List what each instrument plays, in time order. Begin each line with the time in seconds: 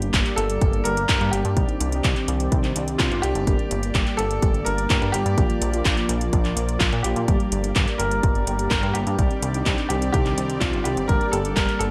Already playing: analog synth bass G1, analog synth pad G3 A#3 D5, grand piano G4
0.02 analog polysynth G3 A#3 D4 G4, closed hi-hat
0.14 analog synth bass G1, kick, clap, closed hi-hat
0.26 clap, closed hi-hat
0.36 analog synth bass G1, grand piano A4, closed hi-hat
0.50 closed hi-hat
0.61 analog synth bass G1, kick, closed hi-hat
0.73 closed hi-hat
0.84 analog synth bass G1, analog polysynth G3 A#3 D4 G4, grand piano A#4, closed hi-hat
0.97 closed hi-hat
1.09 analog synth bass G1, kick, clap, closed hi-hat
1.21 analog synth bass G2, closed hi-hat
1.31 analog synth bass G1, grand piano G4, closed hi-hat
1.45 analog synth bass G2, closed hi-hat
1.57 analog synth bass C2, analog synth pad D#3 C4 G4, analog polysynth C4 D4 D#4 G4, kick, closed hi-hat
1.69 closed hi-hat
1.81 analog synth bass C2, closed hi-hat
1.92 analog polysynth C4 D4 D#4 G4, closed hi-hat
2.04 analog synth bass C2, kick, clap, closed hi-hat
2.16 clap, closed hi-hat
2.28 analog synth bass C2, closed hi-hat
2.40 closed hi-hat
2.52 analog synth bass C2, kick, closed hi-hat
2.64 clap, closed hi-hat
2.76 analog synth bass C2, analog polysynth C4 D4 D#4 G4, closed hi-hat
2.88 closed hi-hat
2.98 analog synth bass C2, grand piano F4, kick, clap, closed hi-hat
3.11 analog synth bass G1, closed hi-hat
3.22 analog synth bass C2, grand piano G4, closed hi-hat
3.35 analog synth bass G1, closed hi-hat
3.47 analog synth bass G1, analog polysynth G3 A#3 D4 G4, analog synth pad A#3, kick, closed hi-hat
3.59 closed hi-hat
3.71 analog synth bass G1, closed hi-hat
3.83 analog polysynth G3 A#3 D4 G4, closed hi-hat
3.95 analog synth bass G1, kick, clap, closed hi-hat
4.07 clap, closed hi-hat
4.17 analog synth bass G1, grand piano A4, closed hi-hat
4.31 closed hi-hat
4.42 analog synth bass G1, kick, closed hi-hat
4.54 closed hi-hat
4.65 analog synth bass G1, analog polysynth G3 A#3 D4 G4, grand piano A#4, closed hi-hat
4.78 closed hi-hat
4.90 analog synth bass G1, kick, clap, closed hi-hat
5.02 analog synth bass G2, closed hi-hat
5.12 analog synth bass G1, grand piano G4, closed hi-hat
5.26 analog synth bass G2, closed hi-hat
5.38 analog synth bass A#1, analog synth pad F3, analog polysynth F3 A#3 D4 F4, kick, closed hi-hat
5.50 closed hi-hat
5.61 analog synth bass A#1, closed hi-hat
5.73 analog polysynth F3 A#3 D4 F4, closed hi-hat
5.85 analog synth bass A#1, kick, clap, closed hi-hat
5.97 clap, closed hi-hat
6.09 analog synth bass A#1, closed hi-hat
6.21 closed hi-hat
6.33 analog synth bass A#1, kick, closed hi-hat
6.45 clap, closed hi-hat
6.57 analog synth bass A#1, closed hi-hat
6.69 closed hi-hat
6.79 analog synth bass A#1, grand piano F4, kick, clap, closed hi-hat
6.92 analog synth bass A#2, closed hi-hat
7.03 analog synth bass A#1, analog polysynth F3 A#3 D4 F4, grand piano G4, closed hi-hat
7.16 analog synth bass A#2, closed hi-hat
7.28 analog synth bass G1, analog synth pad G3, analog polysynth G3 A#3 D4 G4, kick, closed hi-hat
7.40 closed hi-hat
7.52 analog synth bass G1, closed hi-hat
7.64 analog polysynth G3 A#3 D4 G4, closed hi-hat
7.76 analog synth bass G1, kick, clap, closed hi-hat
7.88 clap, closed hi-hat
7.98 analog synth bass G1, grand piano A#4, closed hi-hat
8.11 closed hi-hat
8.23 analog synth bass G1, kick, closed hi-hat
8.35 closed hi-hat
8.47 analog synth bass G1, analog polysynth G3 A#3 D4 G4, closed hi-hat
8.59 closed hi-hat
8.69 analog synth bass G1, grand piano A#4, kick, clap, closed hi-hat
8.83 analog synth bass G2, closed hi-hat
8.94 analog synth bass G1, grand piano G4, closed hi-hat
9.07 analog synth bass G2, closed hi-hat
9.19 analog synth bass C2, analog synth pad D#3 C4 G4 D5, analog polysynth C4 D4 D#4 G4, kick, closed hi-hat
9.31 closed hi-hat
9.42 analog synth bass C2, closed hi-hat
9.54 analog polysynth C4 D4 D#4 G4, closed hi-hat
9.66 analog synth bass C2, kick, clap, closed hi-hat
9.78 clap, closed hi-hat
9.89 analog synth bass C2, grand piano G4, closed hi-hat
10.02 closed hi-hat
10.13 analog synth bass C2, grand piano G4, kick, closed hi-hat
10.26 clap, closed hi-hat
10.38 analog synth bass C2, analog polysynth C4 D4 D#4 G4, closed hi-hat
10.50 closed hi-hat
10.60 analog synth bass C2, grand piano F4, kick, clap, closed hi-hat
10.73 analog synth bass G1, closed hi-hat
10.84 analog synth bass C2, grand piano G4, closed hi-hat
10.97 analog synth bass G1, closed hi-hat
11.08 analog synth bass G1, analog polysynth G3 A#3 D4 G4, analog synth pad A#3, grand piano A#4, kick, closed hi-hat
11.21 closed hi-hat
11.32 analog synth bass G1, grand piano A4, closed hi-hat
11.45 analog polysynth G3 A#3 D4 G4, closed hi-hat
11.55 analog synth bass G1, grand piano A#4, kick, clap, closed hi-hat
11.69 clap, closed hi-hat
11.79 analog synth bass G1, grand piano A4, closed hi-hat